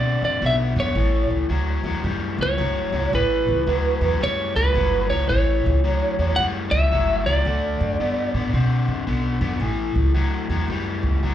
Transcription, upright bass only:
Already playing: B2
0.22 F#2
0.41 B1
0.76 F#2
0.95 A1
1.30 C#2
1.50 D2
1.84 E2
2.04 F#2
2.38 C#2
2.58 G1
2.92 C#2
3.13 A1
3.48 C#2
3.66 D2
4.01 E2
4.21 F#2
4.56 C#2
4.75 G1
5.10 C#2
5.30 A1
5.66 C#2
5.85 D2
6.19 E2
6.38 F#2
6.71 C#2
6.91 G1
7.27 C#2
7.45 D2
7.81 F#2
7.99 G2
8.34 A2
8.53 B2
8.88 F#2
9.07 B1
9.41 F#2
9.60 A1
9.95 C#2
10.15 D2
10.49 E2
10.68 F#2
11.03 C#2
11.22 G1

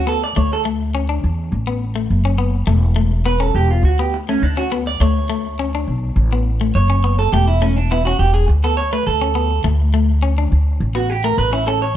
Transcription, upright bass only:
Already playing: D2
0.37 D2
1.24 E2
1.52 A1
2.10 F#1
2.67 E1
3.54 E1
3.83 D2
4.42 D2
5.00 D2
5.87 B1
6.16 A1
6.75 F#1
7.32 E1
8.19 E1
8.49 D2
9.07 D2
9.64 D2
10.52 D2
10.80 A1
11.38 A1

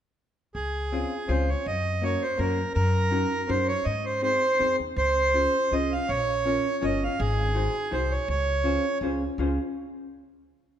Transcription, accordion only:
0.55 G#4
1.29 C5
1.49 C#5
1.67 D#5
2.04 C#5
2.22 C5
2.39 A#4
2.74 A#4
3.49 C5
3.68 C#5
3.85 D#5
4.06 C5
4.23 C5
4.98 C5
5.73 D#5
5.93 F5
6.09 C#5
6.84 D#5
7.04 F5
7.20 G#4
7.93 C5
8.11 C#5
8.30 C#5

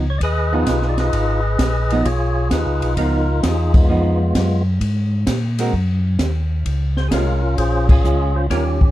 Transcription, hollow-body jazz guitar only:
0.52 F3 B3 D#4
1.92 F3 B3 D#4
2.97 F3 B3 D#4
3.89 F3 B3 D#4
5.59 G#3 C4 F#4 A#4
7.12 G#3 C#4 F4
8.04 G#3 C#4 F4
8.50 D#3 G3 C#4 F4

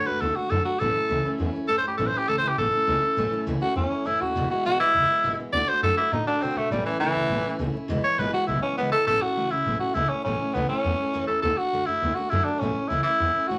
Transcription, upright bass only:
0.06 F#2
0.21 D2
0.36 muted upright bass stroke
0.51 F#2
0.81 A1
0.95 muted upright bass stroke
1.10 C#2
1.25 muted upright bass stroke
1.39 E2
1.54 muted upright bass stroke
1.69 F#2
1.84 G2
1.99 A1
2.14 muted upright bass stroke
2.28 C#2
2.43 C#2
2.58 A1
2.72 muted upright bass stroke
2.87 C#2
3.17 A1
3.32 muted upright bass stroke
3.46 C#2
3.61 muted upright bass stroke
3.76 E2
3.91 muted upright bass stroke
4.05 F#2
4.20 D#2
4.35 E1
4.66 G#1
4.80 G#1
4.94 E1
5.24 G#1
5.38 muted upright bass stroke
5.53 D2
5.67 muted upright bass stroke
5.82 F#2
6.12 A2
6.27 muted upright bass stroke
6.42 B2
6.56 B2
6.70 A1
6.85 muted upright bass stroke
6.99 C#2
7.14 C#2
7.29 A1
7.44 muted upright bass stroke
7.59 C#2
7.74 muted upright bass stroke
7.89 E1
8.18 G#1
8.33 muted upright bass stroke
8.48 B1
8.63 muted upright bass stroke
8.78 C#2
8.92 D2
9.07 A1
9.23 muted upright bass stroke
9.37 C#2
9.51 C#2
9.66 A1
9.81 muted upright bass stroke
9.95 C#2
10.10 muted upright bass stroke
10.25 A1
10.55 C#2
10.69 muted upright bass stroke
10.84 E2
10.99 muted upright bass stroke
11.14 F#2
11.28 E2
11.43 D2
11.58 muted upright bass stroke
11.73 F#2
11.87 F#2
12.02 D2
12.32 F#2
12.61 A1
12.76 muted upright bass stroke
12.90 C#2
13.20 E2
13.49 F#2

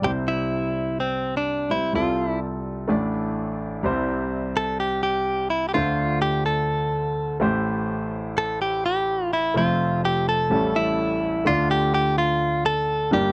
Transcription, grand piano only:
Already playing: D5
0.02 C2 C3 G3 C4 E4 C5
1.70 G3 C4 E4 C5
1.93 C2 C3 G3 C4 F4 A4
2.88 A1 A2 A3 D4 E4 D5
3.83 C2 C3 G3 C4 E4 C5
5.74 D2 D3 A3 D4 F4 C5
7.40 A1 A2 A3 E4 G4 C5
9.54 F1 F2 A3 C4 F4 C5
10.50 A1 A2 G3 C#4 E4 A4
11.45 D2 D3 A3 D4 F4 D5
13.11 G1 G2 A#3 D4 G4 D5

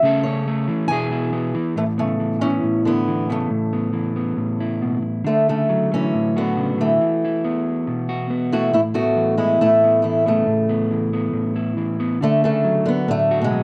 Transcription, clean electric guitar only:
0.03 C#3 A3 C#4 A4
0.26 C#4
0.47 A3
0.68 E3
0.90 B2 B3 E4 G#4
1.11 E4
1.33 B3
1.54 E3
1.76 A2
1.98 B3
2.19 E3
2.43 B3
2.63 A2
2.87 E4
3.08 E3
3.29 B3
3.50 A2
3.73 B3
3.93 E3
4.16 B3
4.37 A2
4.60 E4
4.82 B2
5.03 muted clean electric guitar stroke
5.24 D3
5.48 A3
5.69 F#3
5.92 A3
6.14 A2
6.36 F#4
6.57 C#3
6.78 D3
7.01 E3
7.25 E4
7.44 B3
7.87 B2
8.09 F#4
8.30 B3
8.53 E4
8.72 A2
8.95 B3
9.16 E3
9.40 B3
9.62 A2
9.84 B3
10.05 E3
10.26 B3
10.47 A2
10.69 B3
10.91 E3
11.13 B3
11.33 A2
11.56 E4
11.77 E3
12.00 B3
12.21 D3
12.44 D4
12.64 F#3
13.07 A2
13.31 F#4
13.51 F#3

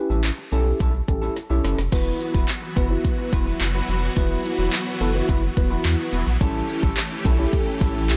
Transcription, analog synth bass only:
0.10 A1
0.52 B1
0.80 B1
1.08 A1
1.50 B1
1.64 F#1
1.78 F1
1.92 E1
2.35 E1
2.77 F#1
3.33 E1
3.61 F#1
3.89 F1
4.17 E1
4.59 E1
5.01 F#1
5.29 F#1
5.57 E1
5.85 E2
6.13 E1
6.27 A#1
6.41 A1
6.83 A1
7.25 B1
7.81 A1
8.09 B1

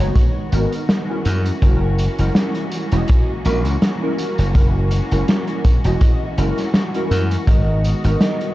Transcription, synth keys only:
0.00 G#3 B3 D#4 F#4 C#5
0.52 G#3 B3 D#4 F#4 A#4
1.08 G#3 C#4 E4 F#4 A#4
1.61 G#3 C#4 E4 F#4 A#4
2.18 G#3 C#4 E4 F#4 A#4
2.91 G#3 C#4 E4 F#4 D#5
3.44 G#3 C#4 E4 F#4 A#4
4.01 G#3 C#4 E4 F#4 A#4
4.54 G#3 C#4 E4 F#4 A#4
5.11 G#3 C#4 E4 F#4 A#4
5.84 G#3 C#4 E4 F#4 D#5
6.37 G#3 C#4 E4 F#4 A#4
6.93 G#3 C#4 E4 F#4 A#4
7.47 G#3 B3 D#4 F#4 A#4
8.03 G#3 B3 D#4 F#4 A#4

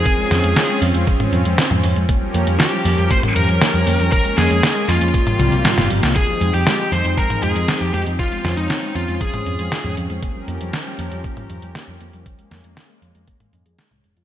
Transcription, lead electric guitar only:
Already playing: G#4
2.60 G4
3.11 C5
3.36 A#4
4.12 A#4
4.38 G#4
4.89 F4
6.16 G#4
6.54 G4
6.92 C5
7.18 A#4
7.43 G#4
7.82 G4
7.94 G4
8.19 F4
8.58 D#4
8.96 F4
9.21 G#4

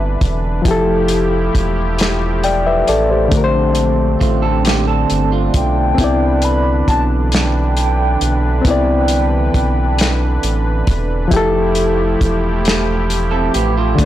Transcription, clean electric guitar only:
4.21 A3 F4
4.42 C4 A4
4.65 A#3 G4
4.88 C4 A4
5.32 A3 F4
13.31 C4 A4
13.54 B3 G4
13.77 A3 F4

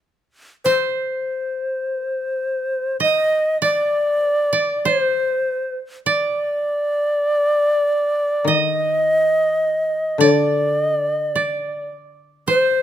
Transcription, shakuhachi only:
0.65 C5
3.02 D#5
3.63 D5
4.86 C5
6.07 D5
8.48 D#5
10.22 D5
10.83 D#5
10.95 D5
11.16 D#5
11.28 D5
12.48 C5

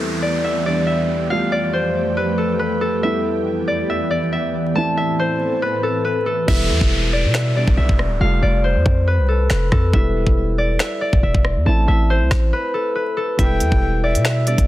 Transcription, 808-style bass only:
6.48 E1
6.70 E2
6.81 E1
7.24 B2
7.68 E1
7.78 B1
7.89 E1
8.11 D1
8.21 F1
8.42 F1
8.75 F2
8.86 F2
9.19 C2
9.50 F1
9.72 F2
9.94 E1
10.27 E1
11.13 E1
11.23 E1
11.35 E1
11.56 E2
11.66 A1
11.88 A1
12.21 C2
12.31 A1
13.39 E1
13.60 E2
13.72 E1
14.15 B2
14.58 E1

